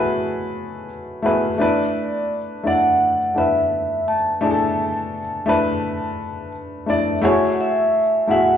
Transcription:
Already playing: A3 E4 F#4 G#4 A4 B4 C#5
1.22 A3 E4 F#4 G#4 B4
1.58 A3 D4 E4 B4
1.63 D5
2.63 A3 D4 E4 D5
2.67 F#5
3.34 A3 D4 E4 B4 E5
4.08 A5
4.41 A3 D4 E4 G#4
4.50 A4
5.46 A3 D4 E4 B4
6.86 A3 D4 E4 D5 E5
7.21 A3 E4 F#4 G#4 C#5
7.53 F#5
7.61 E5
8.27 A3 E4 F#4 G#4 E5 F#5

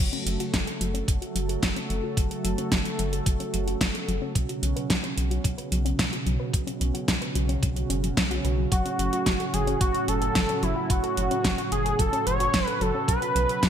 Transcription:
0.00 C#3 F#3 A3 F#4 A4
0.13 C#4, closed hi-hat
0.26 F#1 F#3, closed hi-hat
0.40 F#4, closed hi-hat
0.53 F#1 F#3, kick, snare, closed hi-hat
0.67 A4, closed hi-hat
0.81 F#1 F#3, closed hi-hat
0.94 C#4, closed hi-hat
1.08 F#1 F#3, kick, closed hi-hat
1.22 F#4, closed hi-hat
1.35 F#1 F#3, closed hi-hat
1.49 A4, closed hi-hat
1.63 F#1 F#3, kick, snare, closed hi-hat
1.76 C#4, closed hi-hat
1.90 F#1 F#3, closed hi-hat
2.03 F#4
2.17 F#1 F#3, kick, closed hi-hat
2.31 A4, closed hi-hat
2.44 F#1 F#3, closed hi-hat
2.58 C#4, closed hi-hat
2.72 F#1 F#3, kick, snare, closed hi-hat
2.85 F#4, closed hi-hat
2.99 F#1 F#3, closed hi-hat
3.12 A4, closed hi-hat
3.26 F#1 F#3, kick, closed hi-hat
3.40 C#4, closed hi-hat
3.53 F#1 F#3, closed hi-hat
3.67 F#4, closed hi-hat
3.81 F#1 F#3, kick, snare, closed hi-hat
3.94 A4, closed hi-hat
4.08 F#1 F#3, closed hi-hat
4.22 C#4
4.35 B1 B2 F#3 C#4 F#4, kick, closed hi-hat
4.49 F#4, closed hi-hat
4.62 B1 F#3, closed hi-hat
4.76 B4, closed hi-hat
4.90 B1 F#3, kick, snare, closed hi-hat
5.03 C#4, closed hi-hat
5.17 B1 F#3, closed hi-hat
5.31 F#4, closed hi-hat
5.44 B1 F#3, kick, closed hi-hat
5.58 B4, closed hi-hat
5.71 B1 F#3, closed hi-hat
5.85 C#4, closed hi-hat
5.99 B1 F#3, kick, snare, closed hi-hat
6.13 F#4, closed hi-hat
6.26 B1 F#3, closed hi-hat
6.40 B4
6.53 B1 F#3, kick, closed hi-hat
6.67 C#4, closed hi-hat
6.80 B1 F#3, closed hi-hat
6.94 F#4, closed hi-hat
7.08 B1 F#3, kick, snare, closed hi-hat
7.21 B4, closed hi-hat
7.35 B1 F#3, closed hi-hat
7.49 C#4, closed hi-hat
7.62 B1 F#3, kick, closed hi-hat
7.76 F#4, closed hi-hat
7.90 F#1 C#4, closed hi-hat
8.03 F#3, closed hi-hat
8.17 B1 C#4, kick, snare, closed hi-hat
8.31 F#4, closed hi-hat
8.44 B1 B4, closed hi-hat
8.58 F#3
8.72 F#1 A2 F#3 F#4, kick, closed hi-hat
8.85 C#4, closed hi-hat
8.99 F#1 F#3, closed hi-hat
9.13 F#4, closed hi-hat
9.26 F#1 F#3, kick, snare, closed hi-hat
9.40 A4, closed hi-hat
9.54 F#1 F#3 G#4, closed hi-hat
9.67 C#4, closed hi-hat
9.81 F#1 F#3 F#4, kick, closed hi-hat
9.94 F#4, closed hi-hat
10.08 F#1 F#3 A4, closed hi-hat
10.22 A4, closed hi-hat
10.35 F#1 F#3, kick, snare, closed hi-hat
10.49 C#4, closed hi-hat
10.63 F#1 F#3 E4, closed hi-hat
10.76 F#4
10.90 F#1 F#3 F#4, kick, closed hi-hat
11.03 A4, closed hi-hat
11.17 F#1 F#3, closed hi-hat
11.31 C#4, closed hi-hat
11.44 F#1 F#3, kick, snare, closed hi-hat
11.58 F#4, closed hi-hat
11.72 F#1 F#3 G#4, closed hi-hat
11.85 A4, closed hi-hat
11.99 F#1 F#3 A4, kick, closed hi-hat
12.13 C#4, closed hi-hat
12.26 F#1 F#3 C#5, closed hi-hat
12.40 F#4, closed hi-hat
12.54 F#1 F#3, kick, snare, closed hi-hat
12.67 A4 B4, closed hi-hat
12.81 F#1 F#3 A4, closed hi-hat
12.95 C#4
13.08 B1 B2 C#3 F#3 B4, kick, closed hi-hat
13.22 F#4, closed hi-hat
13.35 B1 F#3, closed hi-hat
13.49 B4, closed hi-hat
13.63 B1 F#3, kick, snare, closed hi-hat

